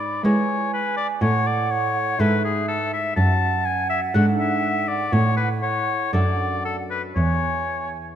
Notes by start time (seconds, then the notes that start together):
Already playing: G#2 D5 B5
0.23 G#3 B3 E4 C#5 G#5
0.73 B4
0.97 D5
1.21 A2 C#5 F#5
1.47 D5
1.71 C#5
2.19 G#2 A3 E4 A4 B4 E5
2.44 G#4
2.68 A4
2.93 E5
3.16 F#2 F#5 A5
3.65 G#5
3.90 E5
4.14 G#2 A3 D4 A4 F#5
4.39 E5
4.88 D5
5.13 A2 C#5
5.37 B4
5.62 C#5
6.13 F#2 A3 D4 A4 D5
6.65 A4
6.90 B4
7.16 E2 C#5 G#5